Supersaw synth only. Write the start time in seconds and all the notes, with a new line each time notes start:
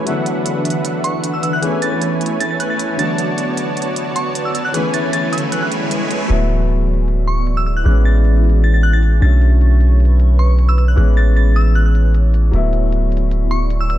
0.07 D3 D4 B4 E5 F#5
1.63 A3 E4 B4 C#5 G#5
2.99 B3 F#4 C#5 D5 A5
4.74 A3 E4 B4 C#5 G#5